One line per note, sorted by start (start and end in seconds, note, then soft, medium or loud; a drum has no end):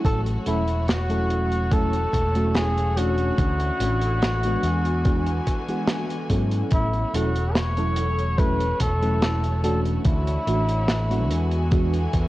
0.00 0.42 F#3 medium
0.00 0.42 A3 medium
0.00 0.42 C#4 medium
0.00 0.43 E4 medium
0.00 10.01 F#4 medium
0.00 0.43 A4 medium
0.05 0.36 A1 loud
0.05 4.60 A3 medium
0.05 0.21 A4 loud
0.05 4.60 C#5 medium
0.05 kick loud
0.05 closed hi-hat medium
0.26 closed hi-hat soft
0.46 2.05 E1 medium
0.46 0.60 F#3 medium
0.46 0.61 A3 medium
0.46 0.61 C#4 medium
0.46 0.86 E4 medium
0.46 0.61 E4 medium
0.46 0.61 A4 medium
0.46 closed hi-hat medium
0.68 closed hi-hat soft
0.88 1.74 F#4 loud
0.88 snare loud
0.88 closed hi-hat medium
1.09 1.67 F#3 medium
1.09 1.67 A3 medium
1.09 1.67 C#4 medium
1.09 1.67 E4 medium
1.09 1.67 A4 medium
1.09 closed hi-hat medium
1.30 closed hi-hat medium
1.52 closed hi-hat medium
1.71 1.94 F#3 medium
1.71 1.94 A3 medium
1.71 1.95 C#4 medium
1.71 1.95 E4 medium
1.71 1.95 A4 medium
1.71 2.56 A4 loud
1.71 kick loud
1.71 closed hi-hat medium
1.93 closed hi-hat medium
2.13 3.30 E1 medium
2.13 kick medium
2.13 closed hi-hat medium
2.34 2.92 F#3 medium
2.34 2.92 A3 medium
2.34 2.92 C#4 medium
2.34 2.92 E4 medium
2.34 2.92 F#4 medium
2.34 closed hi-hat medium
2.55 2.99 G#4 loud
2.55 snare loud
2.55 closed hi-hat medium
2.78 closed hi-hat soft
2.96 3.75 E3 medium
2.96 3.75 A3 medium
2.96 3.75 C#4 medium
2.96 3.76 D4 medium
2.96 6.30 F#4 loud
2.96 3.76 F#4 medium
2.96 closed hi-hat loud
3.18 closed hi-hat soft
3.38 3.70 D2 medium
3.38 4.62 D3 medium
3.38 4.63 E4 medium
3.38 kick loud
3.38 closed hi-hat medium
3.60 closed hi-hat medium
3.79 4.55 A1 medium
3.79 3.94 E3 medium
3.79 3.94 A3 medium
3.79 3.94 C#4 medium
3.79 3.94 D4 medium
3.79 3.95 F#4 medium
3.79 closed hi-hat loud
4.01 closed hi-hat medium
4.22 snare loud
4.22 closed hi-hat medium
4.43 5.00 E3 medium
4.43 5.01 G#3 medium
4.43 5.01 B3 medium
4.43 5.01 D4 medium
4.43 5.01 F#4 medium
4.43 closed hi-hat medium
4.63 5.38 E2 medium
4.63 6.70 D3 medium
4.63 6.70 E3 medium
4.63 6.70 B3 medium
4.63 6.70 G#5 medium
4.63 closed hi-hat medium
4.85 closed hi-hat medium
5.05 5.28 E3 medium
5.05 5.28 G#3 medium
5.05 5.28 B3 medium
5.05 5.28 D4 medium
5.05 5.29 F#4 medium
5.05 kick loud
5.05 closed hi-hat medium
5.26 closed hi-hat medium
5.47 kick medium
5.47 closed hi-hat medium
5.68 6.25 E3 medium
5.68 6.25 G#3 medium
5.68 6.25 B3 medium
5.68 6.26 D4 medium
5.68 6.26 F#4 medium
5.68 closed hi-hat medium
5.88 snare loud
5.88 closed hi-hat medium
6.10 closed hi-hat medium
6.29 6.61 G#2 medium
6.29 7.08 F#3 medium
6.29 7.09 B3 medium
6.29 7.09 C#4 medium
6.29 7.09 E4 medium
6.29 7.09 A4 medium
6.29 kick medium
6.29 closed hi-hat medium
6.51 closed hi-hat medium
6.71 7.03 A1 loud
6.71 11.26 A3 medium
6.71 7.16 E4 loud
6.71 10.02 C#5 medium
6.71 kick loud
6.71 closed hi-hat medium
6.93 closed hi-hat medium
7.13 8.72 E1 medium
7.13 7.27 F#3 medium
7.13 7.28 A3 medium
7.13 7.28 C#4 medium
7.13 7.28 E4 medium
7.13 7.57 F#4 medium
7.13 7.28 A4 medium
7.13 closed hi-hat loud
7.35 closed hi-hat medium
7.55 8.40 C#5 loud
7.55 snare loud
7.55 closed hi-hat medium
7.77 8.34 F#3 medium
7.77 8.34 A3 medium
7.77 8.34 C#4 medium
7.77 8.34 E4 medium
7.77 8.34 A4 medium
7.77 closed hi-hat medium
7.96 closed hi-hat loud
8.19 closed hi-hat medium
8.38 8.61 F#3 medium
8.38 8.61 A3 medium
8.38 8.62 C#4 medium
8.38 8.62 E4 medium
8.38 8.62 A4 medium
8.38 8.82 B4 loud
8.38 kick loud
8.38 closed hi-hat medium
8.60 closed hi-hat medium
8.80 9.97 E1 loud
8.80 9.63 A4 loud
8.80 kick medium
8.80 closed hi-hat loud
9.01 9.58 F#3 medium
9.01 9.59 A3 medium
9.01 9.59 C#4 medium
9.01 9.59 E4 medium
9.01 9.59 A4 medium
9.01 closed hi-hat medium
9.22 snare loud
9.22 closed hi-hat medium
9.44 closed hi-hat medium
9.63 10.42 E3 medium
9.63 10.42 A3 medium
9.63 10.42 C#4 medium
9.63 10.42 D4 medium
9.63 10.43 F#4 medium
9.63 9.79 A4 medium
9.63 closed hi-hat loud
9.85 closed hi-hat medium
10.05 10.37 D2 loud
10.05 11.29 D3 medium
10.05 11.68 E4 medium
10.05 11.29 E4 medium
10.05 12.28 F#4 medium
10.05 11.29 C#5 medium
10.05 kick loud
10.05 closed hi-hat medium
10.27 closed hi-hat medium
10.47 11.31 A1 medium
10.47 10.61 E3 medium
10.47 10.61 A3 medium
10.47 10.61 C#4 medium
10.47 10.61 D4 medium
10.47 10.61 F#4 medium
10.47 closed hi-hat medium
10.69 closed hi-hat medium
10.88 snare loud
10.88 closed hi-hat medium
11.10 11.67 E3 medium
11.10 11.67 G#3 medium
11.10 11.67 B3 medium
11.10 11.67 D4 medium
11.10 11.68 F#4 medium
11.10 closed hi-hat medium
11.30 12.05 E2 medium
11.30 12.28 D3 medium
11.30 12.28 E3 medium
11.30 12.28 B3 medium
11.30 12.28 G#5 medium
11.30 closed hi-hat loud
11.51 closed hi-hat medium
11.71 11.94 E3 medium
11.71 11.95 G#3 medium
11.71 11.95 B3 medium
11.71 11.95 D4 medium
11.71 11.95 F#4 medium
11.71 kick loud
11.71 closed hi-hat medium
11.94 closed hi-hat medium
12.13 12.28 E2 medium
12.13 kick medium
12.13 closed hi-hat medium